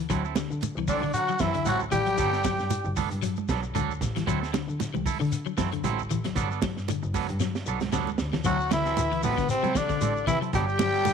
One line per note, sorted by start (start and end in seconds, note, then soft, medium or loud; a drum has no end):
0.10 0.31 D2 medium
0.10 0.24 F#3 medium
0.10 0.25 C4 medium
0.10 0.24 E4 medium
0.10 0.23 A4 medium
0.10 kick medium
0.10 closed hi-hat medium
0.10 shekere medium
0.25 0.36 C4 soft
0.25 0.35 E4 soft
0.25 0.36 A4 medium
0.25 shekere soft
0.35 0.50 D2 soft
0.35 0.51 D3 medium
0.35 snare medium
0.35 closed hi-hat soft
0.35 high conga loud
0.35 shekere medium
0.50 0.75 D3 medium
0.50 shekere soft
0.61 muted clean electric guitar stroke soft
0.61 closed hi-hat medium
0.61 high conga loud
0.61 shekere medium
0.75 0.97 C2 medium
0.75 0.91 E3 medium
0.75 muted clean electric guitar stroke soft
0.75 shekere soft
0.87 1.13 D3 medium
0.87 1.03 F#3 medium
0.87 1.03 C4 medium
0.87 1.13 D4 medium
0.87 1.02 A4 medium
0.87 1.13 D5 medium
0.87 kick medium
0.87 open hi-hat medium
0.87 high conga medium
0.87 low conga medium
0.87 shekere medium
1.02 1.32 D3 medium
1.02 1.17 D3 medium
1.02 muted clean electric guitar stroke soft
1.02 shekere soft
1.13 1.39 F#3 medium
1.13 1.43 F#4 loud
1.13 1.42 F#5 medium
1.13 closed hi-hat medium
1.13 shekere medium
1.28 1.35 F#3 medium
1.28 muted clean electric guitar stroke soft
1.28 shekere soft
1.39 1.52 F#2 medium
1.39 1.67 E3 medium
1.39 1.48 E3 medium
1.39 1.55 F#3 medium
1.39 1.55 C4 medium
1.39 1.67 E4 medium
1.39 1.55 E4 medium
1.39 1.54 A4 medium
1.39 1.65 E5 medium
1.39 kick medium
1.39 snare medium
1.39 closed hi-hat soft
1.39 shekere medium
1.54 1.65 D2 soft
1.54 1.68 D3 medium
1.54 muted clean electric guitar stroke soft
1.54 closed hi-hat soft
1.54 shekere soft
1.65 1.78 A1 medium
1.65 1.77 F#3 medium
1.65 1.83 F#3 medium
1.65 1.83 C4 medium
1.65 1.83 E4 medium
1.65 1.80 F#4 loud
1.65 1.83 A4 medium
1.65 1.77 F#5 medium
1.65 closed hi-hat medium
1.65 high conga medium
1.65 shekere medium
1.80 1.91 D2 soft
1.80 shekere soft
1.91 2.03 A1 medium
1.91 2.00 E3 medium
1.91 2.92 G3 medium
1.91 2.92 G4 loud
1.91 2.92 G5 medium
1.91 muted clean electric guitar stroke soft
1.91 closed hi-hat medium
1.91 low conga medium
1.91 shekere medium
2.06 2.20 F#3 medium
2.06 muted clean electric guitar stroke soft
2.06 closed hi-hat medium
2.06 shekere soft
2.18 2.39 G1 medium
2.18 2.33 F#3 medium
2.18 2.33 B3 medium
2.18 2.32 D4 medium
2.18 2.32 A4 medium
2.18 kick medium
2.18 closed hi-hat medium
2.18 shekere medium
2.33 2.43 B3 soft
2.33 2.43 A4 soft
2.33 snare soft
2.33 shekere soft
2.44 2.58 G1 soft
2.44 2.58 F#3 medium
2.44 kick medium
2.44 snare medium
2.44 closed hi-hat medium
2.44 high conga loud
2.44 shekere medium
2.59 2.84 G2 medium
2.59 snare soft
2.59 shekere soft
2.70 muted clean electric guitar stroke soft
2.70 closed hi-hat medium
2.70 high conga medium
2.70 shekere medium
2.85 3.06 F#1 medium
2.85 muted clean electric guitar stroke soft
2.85 shekere soft
2.96 3.11 B3 medium
2.96 3.10 D4 medium
2.96 3.10 A4 loud
2.96 kick medium
2.96 open hi-hat medium
2.96 high conga medium
2.96 low conga medium
2.96 shekere medium
3.11 3.41 G2 loud
3.11 muted clean electric guitar stroke soft
3.11 closed hi-hat medium
3.11 shekere soft
3.22 3.36 F#3 medium
3.22 closed hi-hat medium
3.22 shekere medium
3.36 muted clean electric guitar stroke medium
3.36 high conga medium
3.36 shekere soft
3.49 3.60 B1 medium
3.49 3.64 F#3 medium
3.49 3.62 B3 medium
3.49 3.62 D4 medium
3.49 3.62 A4 medium
3.49 kick medium
3.49 snare medium
3.49 closed hi-hat medium
3.49 shekere medium
3.63 3.74 G1 soft
3.63 muted clean electric guitar stroke medium
3.63 shekere soft
3.75 3.87 D2 medium
3.75 3.89 D3 medium
3.75 3.92 F#3 medium
3.75 3.92 D4 medium
3.75 3.92 A4 loud
3.75 muted clean electric guitar stroke medium
3.75 closed hi-hat medium
3.75 high conga medium
3.75 shekere medium
3.90 4.00 G1 soft
3.90 shekere soft
4.01 4.13 A1 medium
4.01 muted clean electric guitar stroke soft
4.01 kick medium
4.01 snare soft
4.01 closed hi-hat medium
4.01 low conga medium
4.01 shekere medium
4.15 4.22 E3 medium
4.15 muted clean electric guitar stroke soft
4.15 snare soft
4.15 closed hi-hat soft
4.15 high conga medium
4.15 low conga medium
4.15 shekere soft
4.27 4.48 D2 medium
4.27 4.42 F#3 medium
4.27 4.41 F#3 medium
4.27 4.41 C4 medium
4.27 4.41 E4 medium
4.27 4.40 A4 medium
4.27 kick medium
4.27 closed hi-hat medium
4.27 shekere medium
4.41 4.52 C4 soft
4.41 4.54 E4 soft
4.41 4.52 A4 medium
4.41 snare soft
4.41 shekere soft
4.53 4.67 D2 soft
4.53 4.67 D3 medium
4.53 muted clean electric guitar stroke soft
4.53 snare medium
4.53 closed hi-hat medium
4.53 high conga loud
4.53 shekere medium
4.68 4.93 D3 medium
4.68 shekere soft
4.79 muted clean electric guitar stroke soft
4.79 snare soft
4.79 closed hi-hat medium
4.79 high conga medium
4.79 shekere medium
4.94 5.15 C2 medium
4.94 5.08 E3 medium
4.94 muted clean electric guitar stroke soft
4.94 high conga medium
4.94 shekere soft
5.06 5.19 E4 medium
5.06 5.19 A4 medium
5.06 kick medium
5.06 open hi-hat medium
5.06 high conga medium
5.06 low conga medium
5.06 shekere medium
5.20 5.50 D3 loud
5.20 5.34 D3 medium
5.20 muted clean electric guitar stroke medium
5.20 shekere soft
5.32 closed hi-hat medium
5.32 shekere medium
5.46 5.52 F#3 medium
5.46 muted clean electric guitar stroke medium
5.46 shekere soft
5.57 5.69 F#2 medium
5.57 5.65 E3 medium
5.57 5.72 F#3 medium
5.57 5.71 C4 medium
5.57 5.71 E4 medium
5.57 5.71 A4 medium
5.57 kick medium
5.57 snare medium
5.57 closed hi-hat medium
5.57 shekere medium
5.72 5.83 D2 soft
5.72 5.86 D3 medium
5.72 muted clean electric guitar stroke medium
5.72 closed hi-hat medium
5.72 shekere soft
5.84 5.96 A1 medium
5.84 6.00 F#3 medium
5.84 6.01 C4 medium
5.84 6.01 E4 medium
5.84 6.01 A4 loud
5.84 closed hi-hat medium
5.84 high conga medium
5.84 shekere medium
5.99 6.09 D2 soft
5.99 shekere soft
6.10 6.22 A1 medium
6.10 6.18 E3 medium
6.10 muted clean electric guitar stroke soft
6.10 closed hi-hat medium
6.10 low conga medium
6.10 shekere medium
6.24 6.39 F#3 medium
6.24 muted clean electric guitar stroke soft
6.24 snare soft
6.24 closed hi-hat medium
6.24 low conga medium
6.24 shekere soft
6.36 6.57 G1 medium
6.36 6.50 F#3 medium
6.36 6.50 B3 medium
6.36 6.50 D4 loud
6.36 6.50 A4 loud
6.36 kick medium
6.36 snare soft
6.36 closed hi-hat medium
6.36 shekere medium
6.51 6.62 B3 soft
6.51 6.61 D4 soft
6.51 6.62 A4 medium
6.51 shekere soft
6.62 6.75 G1 soft
6.62 6.77 F#3 medium
6.62 kick medium
6.62 snare medium
6.62 closed hi-hat medium
6.62 high conga loud
6.62 shekere medium
6.77 7.03 G2 medium
6.77 snare soft
6.77 shekere soft
6.88 7.03 D3 medium
6.88 muted clean electric guitar stroke soft
6.88 closed hi-hat medium
6.88 high conga loud
6.88 shekere medium
7.03 7.24 F#1 medium
7.03 muted clean electric guitar stroke soft
7.03 shekere soft
7.14 7.28 F#3 medium
7.14 7.28 B3 medium
7.14 7.28 D4 medium
7.14 7.28 A4 medium
7.14 kick medium
7.14 open hi-hat medium
7.14 high conga medium
7.14 low conga medium
7.14 shekere medium
7.29 7.59 G2 medium
7.29 muted clean electric guitar stroke soft
7.29 closed hi-hat medium
7.29 shekere soft
7.40 7.54 F#3 medium
7.40 snare soft
7.40 shekere loud
7.55 muted clean electric guitar stroke soft
7.55 snare medium
7.55 shekere soft
7.66 7.78 B1 medium
7.66 7.81 F#3 medium
7.66 7.81 B3 medium
7.66 7.81 D4 medium
7.66 7.81 A4 medium
7.66 shekere medium
7.80 7.92 G1 soft
7.80 snare medium
7.80 high conga loud
7.80 shekere soft
7.92 8.04 D2 medium
7.92 8.06 D3 medium
7.92 8.09 F#3 medium
7.92 8.09 B3 medium
7.92 8.09 D4 medium
7.92 8.09 A4 medium
7.92 snare medium
7.92 high conga medium
7.92 shekere medium
8.07 8.18 G1 soft
8.07 high conga medium
8.07 shekere soft
8.18 8.30 D2 medium
8.18 muted clean electric guitar stroke soft
8.18 snare medium
8.18 shekere medium
8.33 8.39 E3 medium
8.33 muted clean electric guitar stroke soft
8.33 snare medium
8.33 low conga medium
8.33 shekere soft
8.44 8.65 D2 loud
8.44 8.59 F#3 medium
8.44 8.69 F#3 medium
8.44 8.59 F#3 medium
8.44 8.59 C4 medium
8.44 8.59 E4 medium
8.44 8.69 F#4 loud
8.44 8.59 A4 medium
8.44 8.70 F#5 medium
8.44 kick loud
8.44 closed hi-hat medium
8.44 shekere medium
8.60 muted clean electric guitar stroke soft
8.60 shekere soft
8.71 8.92 D2 medium
8.71 8.84 D3 medium
8.71 9.19 E3 medium
8.71 9.20 E4 loud
8.71 9.21 E5 medium
8.71 muted clean electric guitar stroke soft
8.71 snare medium
8.71 closed hi-hat medium
8.71 high conga loud
8.71 shekere medium
8.85 9.00 F#3 medium
8.85 9.00 C4 medium
8.85 9.00 E4 medium
8.85 9.00 A4 medium
8.85 snare soft
8.85 closed hi-hat soft
8.85 shekere soft
8.97 9.18 D2 medium
8.97 closed hi-hat medium
8.97 high conga loud
8.97 shekere medium
9.12 9.25 E3 medium
9.12 muted clean electric guitar stroke soft
9.12 closed hi-hat soft
9.12 shekere soft
9.23 9.55 A1 medium
9.23 9.48 B2 medium
9.23 9.37 F#3 medium
9.23 9.47 B3 medium
9.23 9.37 C4 medium
9.23 9.37 E4 medium
9.23 9.36 A4 medium
9.23 9.48 B4 medium
9.23 open hi-hat medium
9.23 high conga medium
9.23 low conga medium
9.23 shekere medium
9.37 9.51 D3 medium
9.37 kick medium
9.37 snare soft
9.37 closed hi-hat soft
9.37 shekere soft
9.49 9.73 C3 medium
9.49 9.79 C4 medium
9.49 9.78 C5 medium
9.49 muted clean electric guitar stroke soft
9.49 closed hi-hat medium
9.49 shekere medium
9.63 9.84 C3 medium
9.63 9.69 F#3 medium
9.63 9.74 F#3 medium
9.63 9.74 C4 medium
9.63 9.74 E4 medium
9.63 9.75 A4 medium
9.63 closed hi-hat soft
9.63 high conga medium
9.63 shekere soft
9.75 10.27 D3 medium
9.75 9.82 E3 medium
9.75 10.26 D4 loud
9.75 10.28 D5 medium
9.75 kick medium
9.75 snare medium
9.75 closed hi-hat medium
9.75 shekere medium
9.89 10.03 D3 medium
9.89 kick medium
9.89 snare soft
9.89 closed hi-hat soft
9.89 shekere soft
10.01 10.27 A1 medium
10.01 10.15 C4 medium
10.01 10.15 A4 medium
10.01 muted clean electric guitar stroke medium
10.01 closed hi-hat medium
10.01 high conga medium
10.01 shekere medium
10.16 muted clean electric guitar stroke soft
10.16 shekere soft
10.27 10.48 C3 loud
10.27 10.39 E3 medium
10.27 10.35 E3 medium
10.27 10.39 E4 loud
10.27 10.40 E5 medium
10.27 muted clean electric guitar stroke soft
10.27 kick medium
10.27 closed hi-hat medium
10.27 low conga medium
10.27 shekere medium
10.41 10.55 F#3 medium
10.41 10.53 C4 soft
10.41 10.53 E4 soft
10.41 10.53 A4 medium
10.41 closed hi-hat soft
10.41 shekere soft
10.53 10.74 G1 loud
10.53 10.68 F#3 medium
10.53 11.13 G3 loud
10.53 10.67 B3 medium
10.53 10.67 D4 medium
10.53 11.13 G4 loud
10.53 10.67 A4 medium
10.53 11.13 G5 loud
10.53 kick medium
10.53 snare soft
10.53 closed hi-hat medium
10.53 shekere medium
10.68 muted clean electric guitar stroke soft
10.68 shekere soft
10.79 11.00 G1 medium
10.79 10.93 F#3 medium
10.79 muted clean electric guitar stroke soft
10.79 snare medium
10.79 closed hi-hat medium
10.79 high conga loud
10.79 shekere medium
10.94 11.08 F#3 medium
10.94 11.08 B3 medium
10.94 11.08 D4 medium
10.94 11.08 A4 medium
10.94 closed hi-hat soft
10.94 shekere soft
11.05 11.13 G1 medium
11.05 11.13 D3 medium
11.05 closed hi-hat medium
11.05 high conga loud
11.05 shekere medium